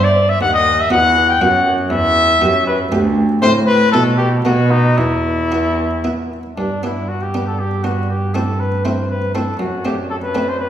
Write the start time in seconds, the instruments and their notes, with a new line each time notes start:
Already playing: harpsichord G2 B3 D4, cello G2
0.04 trumpet D5
0.29 trumpet E5
0.41 cello D#2, harpsichord D#2, trumpet F#5
0.54 trumpet D#5
0.80 trumpet E5
0.90 harpsichord E2 B3 F#4, cello E2, trumpet F#5
1.30 trumpet G5
1.41 cello F#2, harpsichord F#2 B3 F#4, trumpet F#5
1.90 harpsichord E2, cello E2, trumpet E5
2.41 cello F#2, harpsichord F#2 B3 G4
2.67 trumpet B4
2.91 cello D2, harpsichord D2 B3 G4
3.42 cello A2, harpsichord A2 A3 C4 E4, trumpet C5
3.67 trumpet B4
3.92 cello B2, harpsichord B2 B3 E4, trumpet A4
4.18 trumpet G4
4.44 cello B2, harpsichord B2 A3 B3 D#4, trumpet F#4
4.71 trumpet D#4
4.97 cello E2, harpsichord E2, trumpet E4
5.52 harpsichord B3 E4
6.04 harpsichord B3 E4
6.57 cello G2, harpsichord G2, trumpet D4
6.83 harpsichord B3 D4, trumpet E4
7.08 trumpet F#4
7.22 trumpet G4
7.34 harpsichord B3 D4
7.47 trumpet A4
7.59 trumpet G4
7.83 harpsichord B3 D4, trumpet F#4
8.10 trumpet G4
8.34 harpsichord A3 C4 E4, trumpet A4
8.60 trumpet B4
8.85 harpsichord A3 C4 E4, trumpet C5
9.10 trumpet B4
9.34 harpsichord A3 C4 E4, trumpet A4
9.59 harpsichord F#2, cello F#2, trumpet F#4
9.85 harpsichord A3 C4 D4, trumpet G4
10.10 trumpet A4
10.23 trumpet B4
10.35 harpsichord A3 C4 D4
10.49 trumpet C5
10.59 trumpet B4